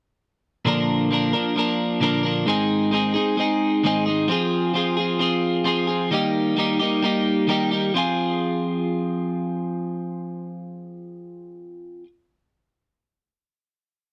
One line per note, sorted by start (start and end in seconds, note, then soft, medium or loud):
0.65 1.33 A#2 medium
0.65 1.34 D3 medium
0.65 1.09 F3 medium
0.65 1.10 A#3 medium
0.65 1.12 D4 medium
0.65 1.13 A#4 medium
1.11 1.35 F3 medium
1.11 1.35 A#3 medium
1.11 1.33 D4 medium
1.11 1.32 A#4 medium
1.33 1.55 F3 soft
1.33 1.56 A#3 soft
1.33 1.57 D4 medium
1.33 1.58 A#4 medium
1.56 2.01 F3 medium
1.56 2.01 A#3 medium
1.56 2.02 D4 medium
1.56 2.03 A#4 medium
2.00 2.45 A#2 medium
2.00 2.46 D3 medium
2.00 2.25 F3 medium
2.00 2.24 A#3 medium
2.00 2.23 D4 medium
2.00 2.22 A#4 medium
2.23 2.47 F3 medium
2.23 2.46 A#3 medium
2.23 2.46 D4 medium
2.23 2.45 A#4 medium
2.46 3.15 G#2 medium
2.46 3.15 D#3 medium
2.46 2.91 G#3 medium
2.46 2.92 C4 medium
2.46 2.92 D#4 medium
2.46 2.94 G#4 medium
2.91 3.17 G#3 medium
2.91 3.15 C4 medium
2.91 3.14 D#4 medium
2.91 3.13 G#4 medium
3.14 3.36 G#3 soft
3.14 3.38 C4 medium
3.14 3.39 D#4 medium
3.14 3.40 G#4 medium
3.37 3.84 G#3 medium
3.37 3.85 C4 medium
3.37 3.85 D#4 medium
3.37 3.85 G#4 medium
3.83 4.28 G#2 medium
3.83 4.28 D#3 medium
3.83 4.08 G#3 medium
3.83 4.07 C4 medium
3.83 4.06 D#4 medium
3.83 4.05 G#4 medium
4.06 4.28 G#3 medium
4.06 4.28 C4 soft
4.06 4.28 D#4 medium
4.06 4.28 G#4 medium
4.28 4.73 F3 medium
4.28 4.74 C4 medium
4.28 4.75 F4 medium
4.28 4.76 G#4 medium
4.74 5.18 F3 medium
4.74 4.99 C4 medium
4.74 4.98 F4 medium
4.74 4.96 G#4 medium
4.97 5.19 C4 soft
4.97 5.20 F4 medium
4.97 5.21 G#4 medium
5.19 5.63 F3 medium
5.19 5.64 C4 medium
5.19 5.66 F4 medium
5.19 5.66 G#4 medium
5.64 6.09 F3 medium
5.64 5.89 C4 medium
5.64 5.88 F4 medium
5.64 5.86 G#4 medium
5.87 6.11 C4 soft
5.87 6.10 F4 medium
5.87 6.09 G#4 medium
6.11 6.79 D#3 medium
6.11 6.55 G3 medium
6.11 6.57 A#3 medium
6.11 6.58 D#4 medium
6.11 6.58 G4 medium
6.56 7.01 G3 medium
6.56 6.81 A#3 medium
6.56 6.80 D#4 medium
6.56 6.78 G4 medium
6.80 7.03 A#3 soft
6.80 7.03 D#4 medium
6.80 7.04 G4 medium
7.02 7.47 G3 medium
7.02 7.48 A#3 medium
7.02 7.49 D#4 medium
7.02 7.50 G4 medium
7.47 7.92 D#3 medium
7.47 7.93 G3 medium
7.47 7.73 A#3 medium
7.47 7.72 D#4 medium
7.47 7.70 G4 medium
7.71 7.94 A#3 soft
7.71 7.93 D#4 medium
7.71 7.92 G4 medium
7.94 12.03 F3 medium
7.94 12.05 C4 medium
7.94 12.06 F4 medium
7.94 12.07 G#4 medium